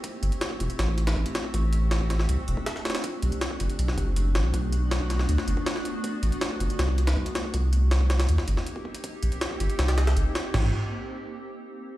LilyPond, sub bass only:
\new Staff \with { instrumentName = "Sub bass" } { \clef bass \time 4/4 \key a \dorian \tempo 4 = 160 r8 g,,16 r8. e,,16 r16 a,,4 a,,16 r8. | a,,2 c,16 r16 e,,16 r4 r16 | r8 b,,16 r8. fis,,16 r16 b,,8 fis,,4 a,,16 b,,16 | b,,2 d,16 r16 fis,,16 r4 r16 |
r8 a,,16 r8. fis,,16 r16 c,4 c,16 r8. | c,2 ees,16 r16 g,,16 r4 r16 | r8 bes,,16 r8. g,,16 r16 c,4 g,,16 r8. | a,,8 r2. r8 | }